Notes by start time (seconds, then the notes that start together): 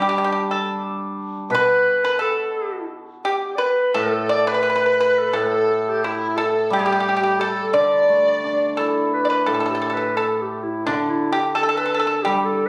Already playing: G3 G4
0.00 D4 G4
0.09 G4
0.18 G4
0.24 G4
0.32 G4
0.51 A4
1.50 B2 B4
1.55 B4
2.05 B4
2.19 A4
3.25 G4
3.56 B4 D5
3.62 B4
3.94 A2 A4
3.98 A4
4.29 D5
4.47 B4
4.54 B4
4.63 B4
4.70 B4
4.75 B4
4.86 B4
5.00 B4
5.18 A4
5.33 A2 A4
5.43 B4
5.48 A4
5.83 A4
5.88 G4
6.04 E4
6.37 A4
6.64 A4
6.70 G3 G4
6.79 G4
6.86 G4
6.92 G4
7.00 G4
7.09 G4
7.17 G4
7.21 G4
7.39 A4
7.73 D3 D5
8.09 A3
8.44 D4
8.77 E4 A4
9.14 B4
9.25 D5
9.30 B4
9.46 A2 A4
9.54 A4
9.60 A4
9.66 A4
9.70 G4
9.75 A4
9.82 A4
9.90 A4 B4
9.97 A4
10.16 A4
10.41 G4
10.63 E4
10.86 D3 D4
11.09 E4
11.32 G4
11.55 A4
11.63 A4
11.69 A4
11.77 A4 B4
11.86 A4
11.94 A4
11.99 A4
12.07 A4
12.22 G3 G4
12.45 A4
12.54 E4